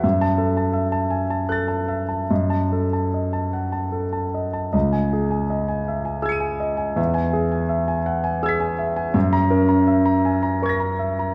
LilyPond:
<<
  \new Staff \with { instrumentName = "Grand piano" } { \time 6/8 \key fis \dorian \tempo 4. = 53 << { r16 a''8 r4 r16 <fis''' a'''>4 | r16 a''8 r2 r16 | r16 gis''8 r4 r16 <e''' gis''' cis'''' dis''''>4 | r16 gis''8 r4 r16 <e''' gis''' b'''>4 |
r16 ais''8 r4 r16 <cis''' gis''' ais'''>4 | } \\ { e''8 a'16 a''16 e''16 a''16 gis''16 a''16 a'16 a''16 e''16 a''16 | dis''8 a'16 a''16 dis''16 a''16 fis''16 a''16 a'16 a''16 dis''16 a''16 | dis''8 gis'16 gis''16 dis''16 gis''16 e''16 gis''16 gis'16 gis''16 dis''16 gis''16 | e''8 gis'16 gis''16 e''16 gis''16 fis''16 gis''16 gis'16 gis''16 e''16 gis''16 |
e''8 ais'16 ais''16 e''16 ais''16 gis''16 ais''16 ais'16 ais''16 e''16 ais''16 | } >> }
  \new Staff \with { instrumentName = "Grand piano" } { \clef bass \time 6/8 \key fis \dorian fis,2. | fis,2. | cis,2. | e,2. |
fis,8 cis'4 r4. | }
>>